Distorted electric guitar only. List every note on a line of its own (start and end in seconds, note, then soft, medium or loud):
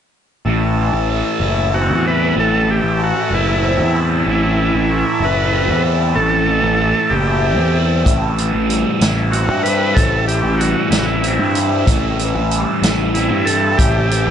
0.46 2.37 A2 medium
0.78 2.68 E3 medium
1.10 3.00 A3 medium
1.41 2.05 E4 medium
1.73 3.62 C4 medium
2.05 3.31 E4 medium
2.37 4.26 A2 medium
2.69 4.57 E3 medium
3.00 4.89 A3 medium
3.31 3.94 E4 medium
3.63 5.53 C4 medium
3.95 5.22 E4 medium
4.26 5.85 A2 medium
4.57 6.48 E3 medium
4.89 6.48 A3 medium
5.22 5.84 E4 medium
5.53 7.44 C4 medium
5.85 7.11 E4 medium
6.17 7.76 A2 medium
6.49 8.37 E3 medium
6.81 8.08 A3 medium
7.12 7.74 E4 medium
7.44 9.32 C4 medium
7.75 9.01 E4 medium
8.06 9.65 A2 medium
8.38 10.27 E3 medium
8.69 10.59 G3 medium
9.01 9.65 E4 medium
9.32 11.22 C4 medium
9.65 10.91 E4 medium
9.96 11.56 A2 medium
10.28 12.20 E3 medium
10.59 12.51 G3 medium
10.91 11.56 E4 medium
11.23 13.15 C4 medium
11.56 12.84 E4 medium
11.88 13.47 A2 medium
12.20 14.11 E3 medium
12.51 14.10 G3 medium
12.84 13.47 E4 medium
13.16 14.30 C4 medium
13.49 14.30 E4 medium
13.79 14.30 A2 medium
14.11 14.30 E3 medium